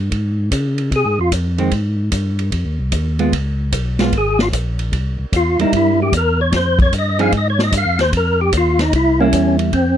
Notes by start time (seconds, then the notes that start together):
Already playing: G2
0.11 G#2, kick, ride
0.51 C#3, kick, hi-hat pedal, ride
0.78 ride
0.91 C3, kick, ride
0.96 G#4
1.05 G#2
1.19 F2 F4
1.31 F2, kick, hi-hat pedal, ride
1.58 D#3 G#3 C4, ride
1.71 G#2, kick, ride
2.12 G2, kick, hi-hat pedal, ride
2.39 ride
2.52 F2, kick, ride
2.65 D#2
2.79 C2
2.92 D#2, kick, hi-hat pedal, ride
3.19 G#3 B3 F4, ride
3.32 C#2, kick, ride
3.72 B1, kick, hi-hat pedal, ride
3.99 G#3 B3 F4, snare, ride
4.12 G#1, kick, ride
4.18 G#4
4.39 F4, snare
4.52 A#1, kick, hi-hat pedal, ride
4.79 ride
4.92 C2, kick, ride
5.19 C2
5.32 E2 F4, kick, hi-hat pedal, ride
5.59 E2 G3 A#3 D#4 E4, ride
5.72 G2, kick, ride
5.77 E4
6.02 G4
6.12 E2, kick, hi-hat pedal, ride
6.17 A#4
6.41 C#5
6.52 F2, kick, snare, ride
6.56 C5
6.79 C#5, kick, ride
6.92 G2, kick, hi-hat pedal, ride
6.98 D#5
7.19 F3 C4 D#4 G#4 F5, ride
7.32 G#2, kick, ride
7.37 D#5
7.50 C#5
7.59 snare
7.64 D#5
7.72 G2, kick, hi-hat pedal, ride
7.77 F5
7.85 F2
7.99 D#2 C5, snare, ride
8.12 F2, kick, ride
8.17 A#4
8.41 G4
8.52 D#2, kick, hi-hat pedal, ride
8.57 F4
8.79 D#4, snare, ride
8.92 C2 E4, kick, ride
9.20 G3 A#3 C#4 E4
9.32 E2, kick, hi-hat pedal, ride
9.59 ride
9.72 F2 C4, kick, ride